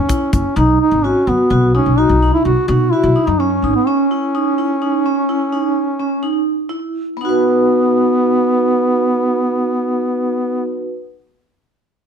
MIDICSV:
0, 0, Header, 1, 5, 480
1, 0, Start_track
1, 0, Key_signature, 5, "major"
1, 0, Tempo, 471698
1, 576, Time_signature, 7, 2, 24, 8
1, 12278, End_track
2, 0, Start_track
2, 0, Title_t, "Vibraphone"
2, 0, Program_c, 0, 11
2, 91, Note_on_c, 0, 64, 75
2, 364, Note_off_c, 0, 64, 0
2, 572, Note_on_c, 0, 63, 83
2, 845, Note_off_c, 0, 63, 0
2, 1061, Note_on_c, 0, 66, 78
2, 1196, Note_off_c, 0, 66, 0
2, 1296, Note_on_c, 0, 66, 71
2, 1432, Note_off_c, 0, 66, 0
2, 1536, Note_on_c, 0, 66, 71
2, 1672, Note_off_c, 0, 66, 0
2, 1777, Note_on_c, 0, 63, 80
2, 1913, Note_off_c, 0, 63, 0
2, 2013, Note_on_c, 0, 66, 70
2, 2150, Note_off_c, 0, 66, 0
2, 2264, Note_on_c, 0, 63, 71
2, 2533, Note_off_c, 0, 63, 0
2, 2739, Note_on_c, 0, 63, 70
2, 2874, Note_off_c, 0, 63, 0
2, 2980, Note_on_c, 0, 66, 69
2, 3114, Note_off_c, 0, 66, 0
2, 3214, Note_on_c, 0, 63, 69
2, 3350, Note_off_c, 0, 63, 0
2, 3459, Note_on_c, 0, 61, 78
2, 3594, Note_off_c, 0, 61, 0
2, 3703, Note_on_c, 0, 63, 79
2, 3837, Note_off_c, 0, 63, 0
2, 3940, Note_on_c, 0, 61, 87
2, 4075, Note_off_c, 0, 61, 0
2, 4184, Note_on_c, 0, 64, 69
2, 4317, Note_off_c, 0, 64, 0
2, 4425, Note_on_c, 0, 63, 73
2, 4558, Note_off_c, 0, 63, 0
2, 4664, Note_on_c, 0, 64, 71
2, 4797, Note_off_c, 0, 64, 0
2, 4902, Note_on_c, 0, 63, 74
2, 5036, Note_off_c, 0, 63, 0
2, 5147, Note_on_c, 0, 61, 75
2, 5279, Note_off_c, 0, 61, 0
2, 5383, Note_on_c, 0, 64, 66
2, 5517, Note_off_c, 0, 64, 0
2, 5622, Note_on_c, 0, 63, 70
2, 5891, Note_off_c, 0, 63, 0
2, 6100, Note_on_c, 0, 61, 65
2, 6234, Note_off_c, 0, 61, 0
2, 6338, Note_on_c, 0, 63, 74
2, 6608, Note_off_c, 0, 63, 0
2, 6812, Note_on_c, 0, 64, 71
2, 7084, Note_off_c, 0, 64, 0
2, 7294, Note_on_c, 0, 59, 64
2, 7336, Note_on_c, 0, 63, 67
2, 7376, Note_on_c, 0, 66, 64
2, 7417, Note_on_c, 0, 71, 67
2, 10959, Note_off_c, 0, 59, 0
2, 11000, Note_off_c, 0, 63, 0
2, 11040, Note_off_c, 0, 66, 0
2, 11081, Note_off_c, 0, 71, 0
2, 12278, End_track
3, 0, Start_track
3, 0, Title_t, "Duduk"
3, 0, Program_c, 1, 69
3, 0, Note_on_c, 1, 61, 85
3, 302, Note_off_c, 1, 61, 0
3, 337, Note_on_c, 1, 61, 76
3, 560, Note_off_c, 1, 61, 0
3, 578, Note_on_c, 1, 63, 82
3, 800, Note_off_c, 1, 63, 0
3, 819, Note_on_c, 1, 63, 90
3, 1060, Note_on_c, 1, 61, 83
3, 1075, Note_off_c, 1, 63, 0
3, 1299, Note_on_c, 1, 59, 85
3, 1314, Note_off_c, 1, 61, 0
3, 1777, Note_off_c, 1, 59, 0
3, 1782, Note_on_c, 1, 61, 98
3, 2017, Note_on_c, 1, 63, 88
3, 2032, Note_off_c, 1, 61, 0
3, 2370, Note_off_c, 1, 63, 0
3, 2376, Note_on_c, 1, 64, 100
3, 2487, Note_off_c, 1, 64, 0
3, 2496, Note_on_c, 1, 66, 101
3, 2719, Note_off_c, 1, 66, 0
3, 2733, Note_on_c, 1, 66, 94
3, 2970, Note_on_c, 1, 64, 105
3, 2985, Note_off_c, 1, 66, 0
3, 3335, Note_on_c, 1, 63, 85
3, 3350, Note_off_c, 1, 64, 0
3, 3456, Note_on_c, 1, 61, 86
3, 3472, Note_off_c, 1, 63, 0
3, 3812, Note_off_c, 1, 61, 0
3, 3818, Note_on_c, 1, 59, 78
3, 3932, Note_on_c, 1, 61, 82
3, 3948, Note_off_c, 1, 59, 0
3, 6812, Note_off_c, 1, 61, 0
3, 7290, Note_on_c, 1, 59, 92
3, 10954, Note_off_c, 1, 59, 0
3, 12278, End_track
4, 0, Start_track
4, 0, Title_t, "Upright bass"
4, 0, Program_c, 2, 32
4, 0, Note_on_c, 2, 40, 75
4, 170, Note_off_c, 2, 40, 0
4, 335, Note_on_c, 2, 30, 73
4, 433, Note_off_c, 2, 30, 0
4, 573, Note_on_c, 2, 35, 99
4, 770, Note_off_c, 2, 35, 0
4, 930, Note_on_c, 2, 32, 80
4, 1128, Note_off_c, 2, 32, 0
4, 1293, Note_on_c, 2, 42, 81
4, 1392, Note_off_c, 2, 42, 0
4, 1529, Note_on_c, 2, 35, 87
4, 1826, Note_off_c, 2, 35, 0
4, 1893, Note_on_c, 2, 35, 68
4, 2090, Note_off_c, 2, 35, 0
4, 2131, Note_on_c, 2, 35, 85
4, 2328, Note_off_c, 2, 35, 0
4, 2493, Note_on_c, 2, 35, 86
4, 2592, Note_off_c, 2, 35, 0
4, 2728, Note_on_c, 2, 47, 98
4, 2927, Note_off_c, 2, 47, 0
4, 3088, Note_on_c, 2, 35, 82
4, 3189, Note_off_c, 2, 35, 0
4, 3329, Note_on_c, 2, 42, 85
4, 3625, Note_off_c, 2, 42, 0
4, 3687, Note_on_c, 2, 32, 65
4, 3788, Note_off_c, 2, 32, 0
4, 12278, End_track
5, 0, Start_track
5, 0, Title_t, "Drums"
5, 95, Note_on_c, 9, 42, 74
5, 96, Note_on_c, 9, 36, 88
5, 197, Note_off_c, 9, 42, 0
5, 198, Note_off_c, 9, 36, 0
5, 335, Note_on_c, 9, 42, 51
5, 336, Note_on_c, 9, 36, 74
5, 437, Note_off_c, 9, 42, 0
5, 438, Note_off_c, 9, 36, 0
5, 12278, End_track
0, 0, End_of_file